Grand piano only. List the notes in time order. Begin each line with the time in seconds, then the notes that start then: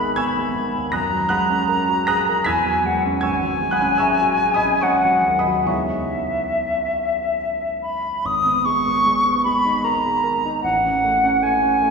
Already playing: G#1 D#3 G#3 B3 D#4 G#4 D#5 E5 F#5 G#5 A#5 B5 C#6 D#6 E6 F#6
0.00 A#4
0.16 B3 G#5 C#6 E6 G#6
0.37 G#3
0.57 D#3
0.75 D#2
0.92 F#2 A#5 D#6 F#6 A#6
1.13 F#3
1.29 G#3 F#5 B5 D#6 F#6
1.50 C#4
1.69 A#4
1.89 F#4
2.07 G#4 A#5 D#6 F#6 A#6
2.29 A#4
2.44 E2 B5 E6 G#6 B6
2.66 F#3
2.85 G#3
3.05 C#4
3.21 G#1 G#5 C#6 E6 G#6
3.43 F#3
3.61 G#3
3.71 F#5 B5 D#6 F#6
3.80 C#4
3.98 G#4 E5 A#5 C#6 E6
4.21 F#4
4.43 G#4
4.54 D#5 G#5 B5 D#6
4.63 C#4
4.81 G#3 C#5 F#5 A#5 C#6
5.05 F#3
5.26 D#2
5.39 D#5 G#5 B5 D#6
5.47 F#3
5.64 C#2 E3 B3 D#4 A#5 C#6
5.68 G#4 C#5 F#5
8.25 G#1
8.45 B3
8.65 G#3
8.85 B3
9.05 G#3
9.24 B3
9.45 G#3
9.65 D#4
9.84 A#4
10.05 G#4
10.24 A#4
10.45 D#4
10.64 A1
10.84 C#4
11.04 A3
11.24 C#4
11.42 A3
11.63 C#4
11.82 A3